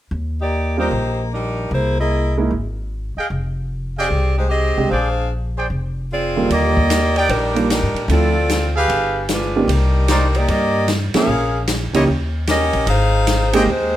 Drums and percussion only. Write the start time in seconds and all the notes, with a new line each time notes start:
6.50 ride
6.77 kick
6.90 snare, hi-hat pedal, ride
7.16 ride
7.29 ride
7.56 ride
7.70 snare, hi-hat pedal, ride
7.96 ride
8.09 ride
8.49 snare, hi-hat pedal, ride
8.89 ride
9.29 snare, hi-hat pedal, ride
9.69 ride
10.08 snare, hi-hat pedal, ride
10.35 ride
10.48 ride
10.88 snare, hi-hat pedal, ride
11.14 snare, ride
11.67 snare, hi-hat pedal, ride
11.94 ride
12.47 snare, hi-hat pedal, ride
12.73 ride
12.87 ride
13.27 snare, hi-hat pedal, ride
13.53 ride